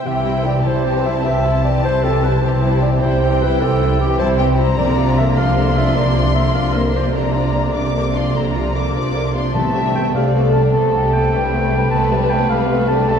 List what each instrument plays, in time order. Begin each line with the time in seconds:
Already playing: harp C4 E4 G4
0.05 double bass section C2, harp C3, cello section C3, viola section E3 C4, violin section G4 G5, clarinet E5
0.23 viola section G3 E4, harp C4, violin section E4 C5
0.45 viola section E3 C4, harp E4, violin section G4, clarinet D5
0.64 double bass section C2, cello section C3, viola section G3 E4, violin section E4 C5 A5, harp G4, clarinet C5
0.84 viola section E3 C4, harp C4, violin section G4
1.04 harp G3, viola section G3 E4, violin section E4 C5, clarinet E5
1.24 double bass section C2, cello section C3, viola section E3 C4, harp C4, violin section G4, clarinet E5
1.45 harp G3, viola section G3 E4, violin section E4 C5
1.63 viola section E3 C4, harp E4, violin section G4, clarinet D5
1.84 double bass section C2, cello section C3, viola section G3 E4, violin section E4 C5, harp G4, clarinet C5
2.03 viola section E3 C4, harp C4, violin section G4, clarinet A4
2.23 harp G3, viola section G3 E4, violin section E4 C5, clarinet B4
2.43 double bass section C2, harp C3, cello section C3, viola section E3 C4, violin section G4, clarinet C5
2.62 viola section G3 E4, harp C4, violin section E4 C5
2.82 viola section E3 C4, harp E4, violin section G4, clarinet D5
3.02 double bass section C2, cello section C3, viola section G3 E4, violin section E4 C5 G5, harp G4, clarinet C5
3.22 viola section E3 C4, harp C4, violin section G4
3.40 harp G3, viola section G3 E4, violin section E4 C5, clarinet B4
3.60 double bass section C2, cello section C3, viola section E3 C4, harp C4, violin section G4, clarinet A4
3.79 harp G3, viola section G3 E4, violin section E4 C5
4.00 viola section E3 C4, harp E4, violin section G4, clarinet G4
4.19 double bass section C2, cello section C3, viola section G3 E4, violin section E4 C5 A5, harp G4, clarinet C5
4.38 viola section E3 C4, harp C4, violin section G4 G5
4.58 harp G3, viola section G3 E4, violin section E4 C5 A#5
4.77 double bass section C2, harp C3, timpani C3, cello section C3, viola section D3 A#3, violin section D4 A#4, clarinet D5
4.97 harp A#3, violin section F4 D5
5.01 viola section F3 D4
5.17 viola section D3 A#3, violin section D4 A#4, harp F4, clarinet E5
5.36 double bass section C2, cello section C3, viola section F3 D4, violin section F4 D5 C6, harp A#4, clarinet F5
5.56 viola section D3 A#3, harp A#3, violin section D4 A#4
5.75 viola section F3 D4, harp C4, violin section F4 D5, clarinet E5
5.94 double bass section C2, harp C3, cello section C3, viola section D3 A#3, violin section D4 A#4, clarinet D5
6.14 viola section F3 D4, harp A#3, violin section F4 D5
6.35 viola section D3 A#3, violin section D4 A#4, harp F4, clarinet E5
6.53 double bass section C2, cello section C3, viola section F3 D4, violin section F4 D5, harp A#4, clarinet F5
6.73 viola section D3 A#3, harp A#3, violin section D4 A#4, clarinet A#4
6.92 viola section F3 D4, harp C4, violin section F4 D5
6.97 clarinet C5
7.12 double bass section C2, harp C3, cello section C3, viola section D3 A#3, violin section D4 A#4 A#5, clarinet D5
7.33 viola section F3 D4, harp A#3, violin section F4 D5
7.53 viola section D3 A#3, violin section D4 A#4, harp F4
7.74 double bass section C2, cello section C3, viola section F3 D4, violin section F4 D5 D6, harp A#4
7.94 viola section D3 A#3, harp A#3, violin section D4 A#4
8.14 viola section F3 D4, harp C4, violin section F4 D5 C6
8.34 double bass section C2, harp C3, cello section C3, viola section D3 A#3, violin section D4 A#4 A#5
8.54 viola section F3 D4, harp A#3, violin section F4 D5
8.74 viola section D3 A#3, violin section D4 A#4 D6, harp F4
8.94 double bass section C2, cello section C3, viola section F3 D4, violin section F4 D5 D6, harp A#4
9.14 viola section D3 A#3, harp A#3, violin section D4 A#4
9.34 viola section F3 D4, harp C4, violin section F4 D5 C6
9.54 double bass section C2, harp C3, timpani C3, cello section C3, violin section A3 A4 E5, viola section A3 B3, clarinet A5
9.75 viola section G3 A3, harp B3, violin section D4 G4
9.95 violin section A3 A4, viola section A3 B3, harp G4, clarinet G5
10.15 double bass section C2, cello section C3, viola section G3 A3, violin section D4 G4 D5, harp A4, clarinet F5
10.34 violin section A3 A4, viola section A3 B3, harp B3
10.53 harp G3, viola section G3 A3, violin section D4 G4, clarinet A5
10.73 double bass section C2, cello section C3, harp C3, viola section A3 B3, violin section A3 A4, clarinet A5
10.93 viola section G3 A3, harp B3, violin section D4 G4
11.12 viola section A3 B3, violin section A3 A4, harp G4, clarinet G5
11.32 double bass section C2, cello section C3, viola section G3 A3, violin section D4 G4 B4, harp A4
11.51 viola section A3 B3, violin section A3 A4, harp B3
11.71 viola section G3 A3, harp G3, violin section D4 G4
11.91 double bass section C2, harp C3, cello section C3, viola section A3 B3, violin section A3 A4, clarinet A5
12.12 viola section G3 A3, harp B3, violin section D4 G4
12.30 violin section A3 A4, viola section A3 B3, harp G4, clarinet G5
12.49 double bass section C2, cello section C3, viola section G3 A3, violin section D4 G4, harp A4, clarinet F5
12.69 viola section A3 B3, violin section A3 A4, harp B3
12.88 viola section G3 A3, harp G3, violin section D4 G4, clarinet A5
13.09 double bass section C2, cello section C3, harp C3, viola section A3 B3, violin section A3 A4, clarinet A5